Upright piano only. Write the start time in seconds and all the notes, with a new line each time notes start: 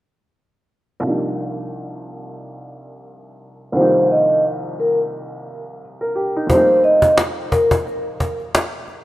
1.00 C2 F3 D4
1.05 G3 A#3 D#4
3.72 C2 D#3 F3
3.78 G3 A#3 D#4
6.01 A#4
6.15 G4
6.36 D#4
6.47 F2 G3
6.51 A3 C4
6.55 A#3 D#4